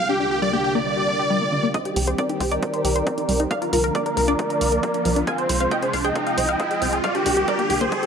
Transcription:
Already playing: analog synth pad C2 D3 G3 A#3 F4
0.09 synth arpeggio sound D4, supersaw synth G4
0.20 synth arpeggio sound D4, supersaw synth G4
0.31 synth arpeggio sound G4, supersaw synth G4
0.42 synth arpeggio sound G3, supersaw synth D5
0.53 synth arpeggio sound A#3, supersaw synth G4
0.64 synth arpeggio sound G4, supersaw synth G4
0.75 synth arpeggio sound A#3, supersaw synth D5
0.86 synth arpeggio sound G3
0.97 synth arpeggio sound G4
1.08 synth arpeggio sound D4
1.19 synth arpeggio sound G4
1.30 synth arpeggio sound G3
1.41 synth arpeggio sound A#3
1.52 synth arpeggio sound D3
1.63 synth arpeggio sound A#3
1.74 analog synth pad D#3 G3 C4 G4, synth arpeggio sound C4, supersaw synth C5 D#5, synth pluck D#5, kick, closed hi-hat, riser
1.85 supersaw synth G4, synth arpeggio sound G4, synth pluck G4, closed hi-hat
1.96 analog synth bass C2, synth arpeggio sound G4, synth pluck G4, supersaw synth G4, open hi-hat
2.07 supersaw synth G4, synth pluck G4, synth arpeggio sound C5, closed hi-hat
2.18 synth arpeggio sound C4, supersaw synth A#4 D5, synth pluck D5, kick, closed hi-hat
2.29 synth arpeggio sound D#4, synth pluck G4, supersaw synth G4, closed hi-hat
2.40 analog synth bass C2, synth pluck G4, supersaw synth G4, synth arpeggio sound C5, kick, open hi-hat
2.52 synth arpeggio sound D#4, supersaw synth A#4 D5, synth pluck D5, closed hi-hat
2.63 synth arpeggio sound C4, kick, closed hi-hat
2.74 synth arpeggio sound C5, closed hi-hat
2.85 analog synth bass C2, synth arpeggio sound G4, open hi-hat
2.96 synth arpeggio sound C5, closed hi-hat
3.07 synth arpeggio sound C4, kick, closed hi-hat
3.18 synth arpeggio sound D#4, closed hi-hat
3.29 analog synth bass C2, synth arpeggio sound G3, open hi-hat
3.40 synth arpeggio sound D#4, closed hi-hat
3.51 analog synth pad D3 F3 A#3 F4, synth arpeggio sound A#3, supersaw synth D5 F5, synth pluck F5, kick, closed hi-hat
3.62 synth arpeggio sound F4, synth pluck A#4, supersaw synth A#4, closed hi-hat
3.73 analog synth bass C2, synth arpeggio sound F4, synth pluck A#4, supersaw synth A#4, open hi-hat
3.84 synth pluck A#4, synth arpeggio sound A#4, supersaw synth A#4, closed hi-hat
3.95 synth arpeggio sound A#3, supersaw synth A#4 D5, synth pluck D5, kick, closed hi-hat
4.06 synth arpeggio sound D4, synth pluck A#4, supersaw synth A#4, closed hi-hat
4.17 analog synth bass C2, synth arpeggio sound A#4, synth pluck A#4, supersaw synth A#4, open hi-hat
4.28 synth arpeggio sound D4, supersaw synth A#4 D5, synth pluck D5, closed hi-hat
4.39 synth arpeggio sound A#3, kick, closed hi-hat
4.50 synth arpeggio sound A#4, closed hi-hat
4.61 analog synth bass C2, synth arpeggio sound F4, open hi-hat
4.72 synth arpeggio sound A#4, closed hi-hat
4.83 synth arpeggio sound A#3, kick, closed hi-hat
4.94 synth arpeggio sound D4, closed hi-hat
5.05 analog synth bass C2, synth arpeggio sound F3, open hi-hat
5.16 synth arpeggio sound D4, closed hi-hat
5.27 analog synth pad C3 G#3, synth arpeggio sound F4, supersaw synth F5 G#5, synth pluck G#5, kick, closed hi-hat
5.38 supersaw synth C5, synth arpeggio sound C5, synth pluck C5, closed hi-hat
5.49 analog synth bass C2, synth arpeggio sound C5, synth pluck C5, supersaw synth C5, open hi-hat
5.60 supersaw synth C5, synth pluck C5, synth arpeggio sound F5, closed hi-hat
5.71 synth arpeggio sound F4, supersaw synth D#5 G5, synth pluck G5, kick, closed hi-hat
5.82 synth arpeggio sound G#4, supersaw synth C5, synth pluck C5, closed hi-hat
5.93 analog synth bass C2, synth pluck C5, supersaw synth C5, synth arpeggio sound F5, kick, open hi-hat
6.05 synth arpeggio sound G#4, supersaw synth D#5 G5, synth pluck G5, closed hi-hat
6.16 synth arpeggio sound F4, kick, closed hi-hat
6.27 synth arpeggio sound F5, closed hi-hat
6.38 analog synth bass C2, synth arpeggio sound C5, open hi-hat
6.49 synth arpeggio sound F5, closed hi-hat
6.60 synth arpeggio sound F4, kick, closed hi-hat
6.71 synth arpeggio sound G#4, closed hi-hat
6.82 analog synth bass C2, synth arpeggio sound C4, open hi-hat
6.93 synth arpeggio sound G#4, closed hi-hat
7.04 analog synth pad D3 G3 A#3 F4, synth arpeggio sound G3, supersaw synth D5 F5, synth pluck F5, kick, closed hi-hat
7.15 synth arpeggio sound D4, supersaw synth G4, synth pluck G4, closed hi-hat
7.26 analog synth bass C2, synth arpeggio sound D4, synth pluck G4, supersaw synth G4, open hi-hat
7.37 synth arpeggio sound G4, synth pluck G4, supersaw synth G4, closed hi-hat
7.48 synth arpeggio sound G3, supersaw synth A#4 D5, synth pluck D5, kick, closed hi-hat
7.59 synth arpeggio sound A#3, synth pluck G4, supersaw synth G4, closed hi-hat
7.70 analog synth bass C2, synth arpeggio sound G4, synth pluck G4, supersaw synth G4, open hi-hat
7.81 synth arpeggio sound A#3, supersaw synth G4 C5, synth pluck C5, closed hi-hat
7.92 synth arpeggio sound G3, kick, closed hi-hat
8.03 synth arpeggio sound G4, closed hi-hat

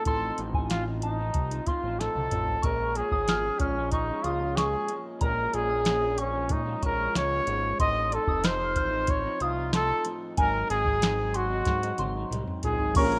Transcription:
0.05 analog synth bass A1, clean electric guitar A2 F3 C4 D#4, trumpet A4, synth bell C6, kick, closed hi-hat
0.38 analog synth bass A1, clean electric guitar A2 F3 C4 D#4, closed hi-hat
0.54 clean electric guitar F3 C4 D#4, synth bell G#5, kick
0.70 clean electric guitar A2 F3 C4 D#4, trumpet F4, snare, closed hi-hat
0.87 clean electric guitar F3 C4 D#4
1.02 trumpet D#4, synth bell A5, closed hi-hat
1.18 clean electric guitar F3 C4 D#4
1.34 analog synth bass C2, kick, closed hi-hat
1.51 clean electric guitar F3 C4 D#4, closed hi-hat
1.67 analog synth bass A1, clean electric guitar A2 F3 C4 D#4, trumpet F4, synth bell C6, kick, closed hi-hat
1.83 analog synth bass A1, clean electric guitar F3 C4 D#4
1.99 clean electric guitar A2 F3 C4 D#4, trumpet A4, snare, closed hi-hat
2.14 analog synth bass C2, clean electric guitar F3 C4 D#4, high tom
2.31 analog synth bass A1, clean electric guitar A2 F3 C4 D#4, closed hi-hat, mid tom
2.48 floor tom
2.62 analog synth bass A#1, clean electric guitar A#2 F3 G#3 C#4, trumpet A#4, synth bell C#6, kick, closed hi-hat
2.95 clean electric guitar A#2 F3 G#3 C#4, trumpet G#4, closed hi-hat
3.12 analog synth bass G#1, clean electric guitar F3 G#3 C#4, synth bell D#6, kick
3.28 clean electric guitar A#2 F3 G#3 C#4, synth bell F6, snare, closed hi-hat
3.44 clean electric guitar F3 G#3 C#4
3.60 analog synth bass A#1, trumpet C#4, synth bell F6, kick, closed hi-hat
3.77 clean electric guitar F3 G#3 C#4
3.91 trumpet D#4, synth bell C#6, kick, closed hi-hat
4.10 clean electric guitar F3 G#3 C#4
4.23 analog synth bass C#2, clean electric guitar A#2 F3 G#3 C#4, trumpet F4, synth bell D#6, closed hi-hat
4.41 clean electric guitar F3 G#3 C#4
4.57 clean electric guitar A#2 F3 G#3 C#4, trumpet G#4, synth bell C#6, snare, closed hi-hat
4.88 clean electric guitar A#2 F3 G#3 C#4, closed hi-hat
5.21 analog synth bass A#1, clean electric guitar A#2 F3 G#3 C#4, trumpet A#4, synth bell A#5, kick, closed hi-hat
5.53 analog synth bass A#1, clean electric guitar A#2 F3 G#3 C#4, trumpet G#4, closed hi-hat
5.69 clean electric guitar F3 G#3 C#4, synth bell D#6
5.85 clean electric guitar A#2 F3 G#3 C#4, snare, closed hi-hat
6.01 clean electric guitar F3 G#3 C#4
6.18 trumpet C#4, synth bell C#6, closed hi-hat
6.34 clean electric guitar F3 G#3 C#4
6.49 analog synth bass A#2, trumpet D#4, kick, closed hi-hat
6.66 clean electric guitar F3 G#3 C#4
6.82 analog synth bass A#1, clean electric guitar A#2 F3 G#3 C#4, trumpet A#4, synth bell C#6, kick, closed hi-hat
6.98 clean electric guitar F3 G#3 C#4
7.15 analog synth bass C#2, clean electric guitar A#2 F3 G#3 C#4, trumpet C#5, snare, closed hi-hat
7.46 analog synth bass G#1, clean electric guitar A#2 F3 G#3 C#4, closed hi-hat
7.79 analog synth bass A1, clean electric guitar A2 F3 C4 D#4, trumpet D#5, synth bell C6, kick, closed hi-hat
8.11 clean electric guitar A2 F3 C4 D#4, trumpet A4, closed hi-hat
8.27 analog synth bass F1, clean electric guitar F3 C4 D#4, synth bell D#6, kick
8.43 clean electric guitar A2 F3 C4 D#4, trumpet C5, synth bell F6, snare, closed hi-hat
8.58 clean electric guitar F3 C4 D#4
8.76 analog synth bass A1, synth bell F6, kick, closed hi-hat
8.91 clean electric guitar F3 C4 D#4
9.07 trumpet C#5, synth bell C6, kick, closed hi-hat
9.24 clean electric guitar F3 C4 D#4
9.40 analog synth bass C2, clean electric guitar A2 F3 C4 D#4, trumpet F4, synth bell D#6, closed hi-hat
9.56 clean electric guitar F3 C4 D#4
9.72 clean electric guitar A2 F3 C4 D#4, trumpet A4, synth bell C6, snare, closed hi-hat
9.88 clean electric guitar F3 C4 D#4
10.04 clean electric guitar A2 F3 C4 D#4, closed hi-hat
10.37 analog synth bass G#1, clean electric guitar G#2 F#3 C4 D#4, trumpet A#4, synth bell G#5, kick, closed hi-hat
10.69 analog synth bass G#1, clean electric guitar G#2 F#3 C4 D#4, trumpet G#4, closed hi-hat
10.85 clean electric guitar F#3 C4 D#4, synth bell D#6, kick
11.01 clean electric guitar G#2 F#3 C4 D#4, snare, closed hi-hat
11.18 clean electric guitar F#3 C4 D#4
11.34 trumpet F#4, synth bell C6, closed hi-hat
11.50 clean electric guitar F#3 C4 D#4
11.65 analog synth bass G#2, kick, snare, closed hi-hat
11.81 clean electric guitar F#3 C4 D#4, closed hi-hat
11.98 analog synth bass G#1, clean electric guitar G#2 F#3 C4 D#4, synth bell C6, closed hi-hat, high tom
12.15 clean electric guitar F#3 C4 D#4
12.31 analog synth bass C2, clean electric guitar G#2 F#3 C4 D#4, closed hi-hat, mid tom
12.48 mid tom
12.63 analog synth bass A#1, clean electric guitar G#2 F#3 C4 D#4, trumpet G#4, closed hi-hat, floor tom
12.79 analog synth bass G#1, floor tom
12.94 analog synth bass A#1, clean electric guitar A#2 G#3 C#4 F4, synth keys F3 A#3 C#4, trumpet A#4, synth bell C#6, kick, closed hi-hat, crash
12.99 synth keys G4
13.06 synth keys G#4
13.12 closed hi-hat

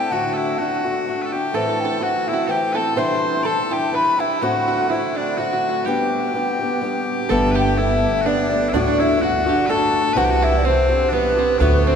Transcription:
Already playing: steel-string acoustic guitar C4 E4 A4, bagpipes G4, flute G5
0.10 steel-string acoustic guitar D2 A2 D3 A3 D4 F#4, bagpipes F#4, flute F#5
0.33 bagpipes A4, flute E5
0.37 bagpipes E4
0.58 steel-string acoustic guitar D3 A3 D4 F#4, bagpipes F#4, flute F#5
0.84 steel-string acoustic guitar D3 A3 D4 F#4
1.06 steel-string acoustic guitar D3 A3 D4 F#4
1.22 bagpipes A4 B4
1.32 steel-string acoustic guitar D3 A3 D4 F#4, bagpipes G4, flute G5
1.53 steel-string acoustic guitar A2 E3 A3 C4 E4, five-string banjo A4, bagpipes A4, flute A5
1.69 five-string banjo A4
1.80 flute G5
1.85 five-string banjo A4
2.01 steel-string acoustic guitar E3 A3 C4 E4, five-string banjo F#4, bagpipes F#4, flute F#5
2.17 five-string banjo F#4
2.27 steel-string acoustic guitar A3 C4 E4, bagpipes E4, flute E5
2.33 five-string banjo F#4
2.47 steel-string acoustic guitar E3 A3 C4, five-string banjo G4, bagpipes G4 A4, flute G5
2.52 steel-string acoustic guitar E4
2.73 steel-string acoustic guitar A3 E4, five-string banjo A4, bagpipes B4, flute A5
2.77 steel-string acoustic guitar C4, bagpipes A4
2.96 steel-string acoustic guitar C3 E3 G3 D4 E4, five-string banjo C5, bagpipes C5, flute C6
3.43 steel-string acoustic guitar E3 G3 D4, five-string banjo A4, bagpipes A4 D5, flute A5
3.65 flute A5
3.71 steel-string acoustic guitar G3 D4 E4, five-string banjo G4, bagpipes G4, flute G5
3.92 steel-string acoustic guitar E3 G3 D4 E4, five-string banjo B4, bagpipes B4, flute B5
4.18 steel-string acoustic guitar G3 D4 E4, bagpipes E4, five-string banjo E4, flute E5
4.41 steel-string acoustic guitar D2 A2 D3 A3 C4 F#4, bagpipes F#4, five-string banjo F#4, flute F#5
4.68 five-string banjo F#4
4.89 steel-string acoustic guitar D3 A3 C4 F#4, five-string banjo E4, bagpipes E4, flute E5
5.15 five-string banjo D4, bagpipes D4, flute D5
5.37 steel-string acoustic guitar D3 A3 C4 F#4, bagpipes F#4, five-string banjo F#4, flute F#5
5.53 five-string banjo F#4
5.69 five-string banjo F#4
5.85 steel-string acoustic guitar G3 B3 D4 G4, five-string banjo G4, bagpipes G4, flute G5
6.34 steel-string acoustic guitar G3 B3 D4 G4
6.59 steel-string acoustic guitar B3 D4 G4
6.81 steel-string acoustic guitar G3 B3 D4 G4
7.29 upright bass G1, steel-string acoustic guitar G2 D3 G3 A3 B3 D4, five-string banjo A4, bagpipes A4, flute A5
7.51 five-string banjo G4, bagpipes B4
7.56 bagpipes G4, flute G5
7.77 steel-string acoustic guitar G3 A3 B3 D4, five-string banjo E4, bagpipes E4, flute E5
8.22 steel-string acoustic guitar G3, bagpipes F#4
8.26 steel-string acoustic guitar A3 B3 D4, five-string banjo D4, bagpipes D4, flute D5
8.50 steel-string acoustic guitar G3 A3 B3 D4
8.69 bagpipes E4
8.73 upright bass D2, steel-string acoustic guitar D2 A2 D3 A3 D4 F#4, bagpipes D4, five-string banjo D4, flute D5
8.80 five-string banjo D4
8.88 five-string banjo D4
8.99 bagpipes E4, five-string banjo E4, flute E5
9.20 steel-string acoustic guitar D3 A3 D4 F#4, bagpipes F#4, five-string banjo F#4, flute F#5
9.46 steel-string acoustic guitar D3 A3 D4 F#4, five-string banjo G4
9.66 steel-string acoustic guitar D3 A3 D4, bagpipes A4 B4, flute A5
9.70 steel-string acoustic guitar F#4, five-string banjo A4
10.13 upright bass C2, steel-string acoustic guitar C3 E3 G3, bagpipes B4
10.17 steel-string acoustic guitar C4 G4, bagpipes F#4, five-string banjo F#4, flute F#5
10.24 bagpipes G4
10.30 bagpipes F#4
10.42 five-string banjo E4, bagpipes E4, flute E5
10.58 flute D5
10.63 steel-string acoustic guitar E3 G3 C4 G4, five-string banjo C4, bagpipes C4, flute C5
10.89 steel-string acoustic guitar G3 C4 G4
11.09 steel-string acoustic guitar E3 G3, five-string banjo B3, bagpipes D4, flute B4
11.13 bagpipes B3, steel-string acoustic guitar C4 G4
11.37 steel-string acoustic guitar G3 C4 G4, five-string banjo C4
11.58 steel-string acoustic guitar D2 A2 D3 A3 D4 F#4, upright bass D2, five-string banjo B3, bagpipes B3 D4, flute B4
11.86 five-string banjo C4, bagpipes C4, flute C5

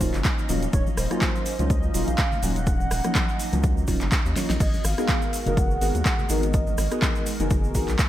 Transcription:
Already playing: analog synth pad A#3 C#4 D#4 D#5, soft synth lead C5
0.00 analog synth bass D#1, synth stab F#3 A#3 C#4 D#4 F4, kick, open hi-hat, shaker
0.14 analog synth bass F#1, clap, closed hi-hat, high conga, shaker
0.24 kick, clap, closed hi-hat, shaker
0.38 shaker
0.49 analog synth bass D#1, synth stab F#3 A#3 C#4 D#4 F4, open hi-hat, high conga, shaker
0.62 closed hi-hat, shaker
0.73 analog synth bass D#1, soft synth lead C#5, kick, closed hi-hat, shaker
0.87 high conga, shaker
0.97 analog synth bass D#1, soft synth lead C5, cross-stick, open hi-hat, shaker
1.11 synth stab F#3 A#3 C#4 D#4 F4, cross-stick, closed hi-hat, shaker
1.21 kick, clap, closed hi-hat, high conga, shaker
1.35 shaker
1.46 open hi-hat, shaker
1.59 analog synth bass C#2, synth stab F#3 A#3 C#4 D#4 F4, closed hi-hat, high conga, low conga, shaker
1.70 soft synth lead D#5, kick, closed hi-hat, shaker
1.83 shaker
1.94 analog synth bass D#1, synth stab F#3 A#3 C#4 D#4 F4, open hi-hat, shaker
2.08 analog synth bass A#1, soft synth lead F5, closed hi-hat, high conga, shaker
2.18 kick, clap, closed hi-hat, shaker
2.32 low conga, shaker
2.42 analog synth bass D#1, synth stab F#3 A#3 C#4 D#4 F4, soft synth lead F#5, open hi-hat, high conga, shaker
2.56 closed hi-hat, shaker
2.67 kick, closed hi-hat, shaker
2.80 high conga, shaker
2.91 analog synth bass D#1, cross-stick, open hi-hat, shaker
3.04 synth stab F3 F#3 A#3 C#4 D#4, cross-stick, closed hi-hat, shaker
3.15 kick, clap, closed hi-hat, high conga, shaker
3.29 shaker
3.39 open hi-hat, shaker
3.52 analog synth bass C#2, synth stab F3 F#3 A#3 C#4 D#4, closed hi-hat, high conga, low conga, shaker
3.63 kick, closed hi-hat, shaker
3.77 shaker
3.87 analog synth bass D#1, synth stab F#3 A#3 C#4 D#4 F4, kick, open hi-hat, shaker
4.00 analog synth bass F#1, clap, closed hi-hat, high conga, shaker
4.12 kick, clap, closed hi-hat, shaker
4.25 analog synth bass D#2, shaker
4.36 synth stab F#3 A#3 C#4 D#4 F4, snare, open hi-hat, high conga, shaker
4.50 analog synth bass A#1, snare, closed hi-hat, shaker
4.60 analog synth bass G#1, analog synth pad G#3 B3 F#4 A#4, soft synth lead D#5, kick, closed hi-hat, crash, shaker
4.74 high conga, shaker
4.84 analog synth bass G#1, soft synth lead F5, cross-stick, open hi-hat, shaker
4.98 synth stab B3 D#4 F#4 G#4 A#4, cross-stick, closed hi-hat, shaker
5.08 kick, clap, closed hi-hat, high conga, shaker
5.22 shaker
5.33 open hi-hat, shaker
5.46 analog synth bass F#1, synth stab B3 D#4 F#4 G#4 A#4, closed hi-hat, high conga, low conga, shaker
5.57 soft synth lead F#5, kick, closed hi-hat, shaker
5.71 shaker
5.81 analog synth bass G#1, synth stab B3 D#4 F#4 G#4 A#4, soft synth lead F#5, open hi-hat, shaker
5.95 analog synth bass D#2, closed hi-hat, high conga, shaker
6.05 kick, clap, closed hi-hat, shaker
6.19 low conga, shaker
6.29 analog synth bass G#1, synth stab B3 D#4 F#4 G#4 A#4, soft synth lead D#5, open hi-hat, high conga, shaker
6.43 closed hi-hat, shaker
6.54 kick, closed hi-hat, shaker
6.67 high conga, shaker
6.78 analog synth bass G#1, cross-stick, open hi-hat, shaker
6.91 synth stab B3 D#4 F#4 G#4 A#4, cross-stick, closed hi-hat, shaker
7.02 kick, clap, closed hi-hat, high conga, shaker
7.15 shaker
7.26 open hi-hat, shaker
7.39 analog synth bass F#1, synth stab B3 D#4 F#4 G#4 A#4, closed hi-hat, high conga, low conga, shaker
7.50 kick, closed hi-hat, shaker
7.64 shaker
7.74 analog synth bass G#1, synth stab B3 D#4 F#4 G#4 A#4, kick, open hi-hat, shaker
7.88 analog synth bass B1, clap, closed hi-hat, high conga, shaker
7.99 kick, clap, closed hi-hat, shaker

